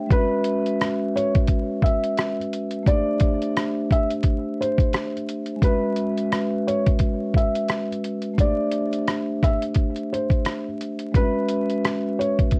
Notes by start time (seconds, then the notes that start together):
Already playing: E5 G5
0.07 G#3 C#4, kick
0.12 F#4 B4, closed hi-hat
0.17 E5
0.44 closed hi-hat
0.66 closed hi-hat
0.81 cross-stick, closed hi-hat
1.16 C#5, closed hi-hat
1.35 kick, closed hi-hat
1.48 kick, closed hi-hat
1.82 E5, kick, closed hi-hat
2.04 closed hi-hat
2.18 cross-stick, closed hi-hat
2.41 closed hi-hat
2.53 closed hi-hat
2.71 closed hi-hat
2.83 A3 D4, kick
2.87 G4 C5 D5, closed hi-hat
2.93 E5
3.20 kick, closed hi-hat
3.42 closed hi-hat
3.57 cross-stick, closed hi-hat
3.91 E5, kick, closed hi-hat
4.11 closed hi-hat
4.23 kick, closed hi-hat
4.61 C5, closed hi-hat
4.78 kick, closed hi-hat
4.93 cross-stick, closed hi-hat
5.17 closed hi-hat
5.29 closed hi-hat
5.46 closed hi-hat
5.56 G#3 C#4
5.61 F#4 B4, kick, closed hi-hat
5.67 E5
5.96 closed hi-hat
6.17 closed hi-hat
6.32 cross-stick, closed hi-hat
6.67 C#5, closed hi-hat
6.86 kick, closed hi-hat
6.99 kick, closed hi-hat
7.34 E5, kick, closed hi-hat
7.55 closed hi-hat
7.68 cross-stick, closed hi-hat
7.92 closed hi-hat
8.04 closed hi-hat
8.22 closed hi-hat
8.34 A3 D4
8.38 G4 C5 D5, kick, closed hi-hat
8.44 E5
8.72 closed hi-hat
8.93 closed hi-hat
9.08 cross-stick, closed hi-hat
9.43 E5, kick, cross-stick, closed hi-hat
9.62 closed hi-hat
9.75 kick, closed hi-hat
9.96 closed hi-hat
10.13 C5, closed hi-hat
10.30 kick, closed hi-hat
10.45 cross-stick, closed hi-hat
10.81 closed hi-hat
10.99 closed hi-hat
11.12 G#3 C#4, kick, closed hi-hat
11.16 F#4 B4
11.22 E5
11.48 closed hi-hat
11.69 closed hi-hat
11.84 cross-stick, closed hi-hat
12.19 C#5, closed hi-hat
12.39 kick, closed hi-hat
12.51 kick, closed hi-hat